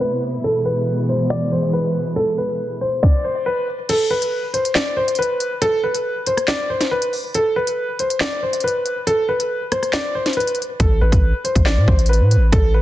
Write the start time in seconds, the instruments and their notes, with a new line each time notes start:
Already playing: string section C3 A3 B3 E4
0.01 grand piano B4
0.11 closed hi-hat
0.22 closed hi-hat
0.44 string section B2 E3 G#3, grand piano A4, closed hi-hat
0.65 grand piano B4
0.77 closed hi-hat
1.09 grand piano C5, closed hi-hat
1.20 closed hi-hat
1.30 grand piano D5
1.52 grand piano C5
1.63 closed hi-hat
1.70 grand piano B4, closed hi-hat
1.77 closed hi-hat
1.95 closed hi-hat
2.16 grand piano A4, closed hi-hat
2.38 grand piano B4
2.49 closed hi-hat
2.81 grand piano C5, closed hi-hat
2.92 closed hi-hat
3.03 grand piano D5, kick, snare
3.24 grand piano C5
3.46 grand piano B4
3.89 grand piano A4, closed hi-hat, crash
4.11 grand piano B4
4.22 closed hi-hat
4.54 grand piano C5, closed hi-hat
4.65 closed hi-hat
4.75 grand piano D5, snare, clap
4.97 grand piano C5
5.08 closed hi-hat
5.15 grand piano B4, closed hi-hat
5.22 closed hi-hat
5.40 closed hi-hat
5.62 grand piano A4, closed hi-hat
5.84 grand piano B4
5.95 closed hi-hat
6.26 grand piano C5, closed hi-hat
6.37 cross-stick, closed hi-hat
6.48 grand piano D5, snare, clap
6.70 grand piano C5
6.81 snare, closed hi-hat
6.91 grand piano B4
7.02 closed hi-hat
7.13 open hi-hat
7.34 grand piano A4, closed hi-hat
7.56 grand piano B4
7.67 closed hi-hat
7.99 grand piano C5, closed hi-hat
8.10 closed hi-hat
8.20 grand piano D5, snare, clap
8.43 grand piano C5
8.53 closed hi-hat
8.60 grand piano B4, closed hi-hat
8.68 closed hi-hat
8.86 closed hi-hat
9.07 grand piano A4, closed hi-hat
9.29 grand piano B4
9.40 closed hi-hat
9.72 grand piano C5, cross-stick, closed hi-hat
9.83 cross-stick, closed hi-hat
9.93 grand piano D5, snare, clap
10.15 grand piano C5
10.26 snare, closed hi-hat
10.33 grand piano B4, closed hi-hat
10.40 closed hi-hat
10.47 closed hi-hat
10.55 closed hi-hat
10.62 closed hi-hat
10.80 808-style bass A1, grand piano A4, kick, closed hi-hat
11.01 808-style bass A1, grand piano B4
11.12 808-style bass A1, kick, closed hi-hat
11.44 grand piano C5, closed hi-hat
11.55 808-style bass A1, kick, closed hi-hat
11.66 grand piano D5, snare, clap
11.77 808-style bass A2
11.88 808-style bass A1, grand piano C5, kick
11.99 closed hi-hat
12.06 grand piano B4, closed hi-hat
12.13 closed hi-hat
12.20 808-style bass A2
12.31 closed hi-hat
12.36 808-style bass A1
12.52 808-style bass A1, grand piano A4, kick, closed hi-hat
12.74 grand piano B4